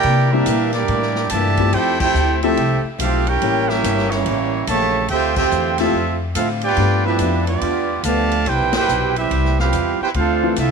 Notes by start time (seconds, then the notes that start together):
Already playing: A#3 E4 G4 A#4 D5 G5
0.03 C3 E3, kick, ride
0.07 A#3 D4
0.32 G3 A#3 C4 D4 E4 G4 A#4 E5
0.46 A#2 C3 E3 A#3 D4, kick, hi-hat pedal, ride
0.73 G3 D4 E4 G4 A#4 D5, snare, ride
0.88 A2 C3 E3, kick, ride
0.92 A#3 D4
1.02 snare
1.15 snare
1.29 G2 A#2 C3 E3 A3 G4 D5 E5 A5, kick, hi-hat pedal, ride
1.34 E3 A#3 D4
1.57 F3 A3 C4 E4 G4, kick, ride
1.73 F2 F3 A3 C4 E4 G4 A4 C5 G5, kick, ride
1.77 G4
2.00 C4 E4 G4 A4 C5 G5, kick, crash
2.14 D2 F3 A3, hi-hat pedal
2.18 E4 G4
2.42 F3 A3 C4 E4 G4 A4 E5, ride
2.57 C2 F3 A3 E4 G4, kick, ride
2.84 muted upright bass stroke
2.98 B1 F3 A3 C4 E4 F4 G4 A4 F5, kick, hi-hat pedal, ride
3.27 C#4 E4 G4 A#4 C#5 G5, ride
3.41 A1 A2 G3 A#3 C#4 E4 A#4, kick, ride
3.69 G3 C#4 E4 G4 A#4 E5, snare
3.84 G1 A2 G3 A#3 C#4, kick, hi-hat pedal, ride
3.98 snare
4.11 E3 G3 A#3 C#4 E4 G4 C#5, snare, ride
4.25 A1 A2 G3 A#3 C#4, kick, ride
4.67 A#1 A2 C#3 E3 G3 A3 A#3 C#4 G4 C#5 E5 A5, kick, hi-hat pedal, ride
5.08 D2 D3 G3 A3 C4 F4 G4 C5 E5 G5, kick, ride
5.13 F4
5.36 A3 C4 F4 G4 C5 E5 G5, kick, crash
5.51 E2 D3 G3 C4 F4, hi-hat pedal
5.78 F3 A3 C4 E4 F4 G4 A4 E5, snare, ride
5.93 F2 D3 G3 C4, kick
5.97 F4
6.35 A2 D3 G3 A3 C4 E4 F4 A4 F5, kick, hi-hat pedal, ride
6.61 B3 D4 F4 G4 B4 D5 G5, ride
6.77 G2 F3 A3 B3 D4 G4, kick, ride
6.81 D4
7.05 F3 B3 D4 E4 G4 B4 E5
7.19 F2 G2 F3 B3 D4, kick, hi-hat pedal, ride
7.47 B3 D4 F4 G4 D5, ride
7.61 E2 G2 F3 B3 D4, kick, ride
8.03 D2 G2 D3 F3 A3 B3 D4 G4 D5 F5 A5, kick, hi-hat pedal, ride
8.31 ride
8.46 C2 C3 G3 B3 E4 G4 B4 C5 G5, kick, ride
8.50 E4
8.60 B1
8.73 G1 B2 E4 G4, snare, ride
8.77 B4 C5 G5
8.88 B1 C3 G3 B3 E4, hi-hat pedal
9.16 G3 C4 E4 G4 B4 E5, ride
9.31 C2 C3 G3 B3 E4, kick, ride
9.45 snare
9.59 G3 C4 F4 G4 B4 F5, snare
9.72 E2 C3 G3 B3 E4, kick, hi-hat pedal, ride
10.01 B3 E4 G4 B4 C5 G5, muted upright bass stroke
10.14 D2 D3 A3 C4 D4 F4 A4 C5 F5, kick, ride
10.43 E3 A3 C4 D4 F4
10.56 C2 D3 A3 C4 E4 F4 A4 E5, kick, hi-hat pedal, ride